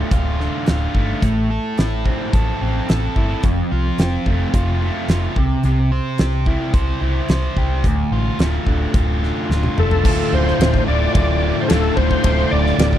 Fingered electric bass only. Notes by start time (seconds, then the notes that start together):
0.11 D1
0.68 D1
0.95 G1
1.22 A1
1.78 A1
2.34 A1
2.61 A1
2.89 A1
3.16 G1
3.43 F1
3.72 C2
3.98 F1
4.26 F1
4.53 F1
5.08 F1
5.36 C2
5.64 C2
6.19 C2
6.74 C2
7.01 C2
7.29 C2
7.56 C2
7.84 D1
8.11 A1
8.39 D1
8.67 D1
8.94 D1
9.49 D1
9.78 F1
10.05 D1
10.32 D1
10.59 D1
10.88 D1
11.15 D1
11.71 D1
11.96 D1
12.25 D1
12.52 D1
12.78 D1